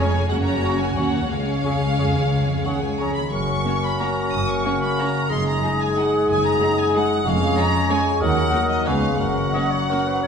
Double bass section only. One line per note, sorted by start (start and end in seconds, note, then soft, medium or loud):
0.00 0.28 F1 medium
0.32 0.98 F#1 medium
0.97 1.30 D#2 soft
1.29 3.13 C#2 soft
3.33 3.60 F#1 soft
4.32 4.59 F#1 soft
5.30 5.57 F#1 soft
6.27 6.54 F#1 medium
7.25 7.52 F1 medium
8.21 8.48 D#2 medium
8.87 9.14 C#2 medium
9.20 9.48 F#1 medium
10.23 10.27 F#1 soft